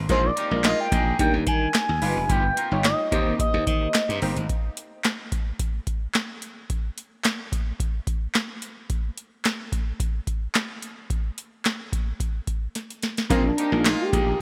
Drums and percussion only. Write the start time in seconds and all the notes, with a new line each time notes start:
0.09 kick, closed hi-hat
0.37 closed hi-hat
0.64 snare, clap, closed hi-hat
0.92 kick, closed hi-hat
1.19 kick, closed hi-hat
1.47 kick, closed hi-hat
1.74 snare, clap, closed hi-hat
2.02 open hi-hat
2.29 kick, closed hi-hat
2.57 closed hi-hat
2.84 snare, clap, closed hi-hat
3.12 kick, closed hi-hat
3.39 kick, closed hi-hat
3.67 kick, closed hi-hat
3.94 snare, clap, closed hi-hat
4.10 closed hi-hat
4.22 open hi-hat
4.37 closed hi-hat
4.49 kick, closed hi-hat
4.77 closed hi-hat
5.04 snare, clap, closed hi-hat
5.32 kick, closed hi-hat
5.59 kick, closed hi-hat
5.87 kick, closed hi-hat
6.15 snare, clap, closed hi-hat
6.42 closed hi-hat
6.70 kick, closed hi-hat
6.98 closed hi-hat
7.24 snare, clap, closed hi-hat
7.52 kick, closed hi-hat
7.80 kick, closed hi-hat
8.07 kick, closed hi-hat
8.35 snare, clap, closed hi-hat
8.62 closed hi-hat
8.90 kick, closed hi-hat
9.17 closed hi-hat
9.45 snare, clap, closed hi-hat
9.72 kick, closed hi-hat
10.00 kick, closed hi-hat
10.27 kick, closed hi-hat
10.55 snare, clap, closed hi-hat
10.82 closed hi-hat
11.10 kick, closed hi-hat
11.38 closed hi-hat
11.65 snare, clap, closed hi-hat
11.93 kick, closed hi-hat
12.20 kick, closed hi-hat
12.47 kick, closed hi-hat
12.75 snare, closed hi-hat
12.90 closed hi-hat
13.03 snare, closed hi-hat
13.17 snare, closed hi-hat
13.30 kick, closed hi-hat
13.58 closed hi-hat
13.85 snare, clap, closed hi-hat
14.13 kick, closed hi-hat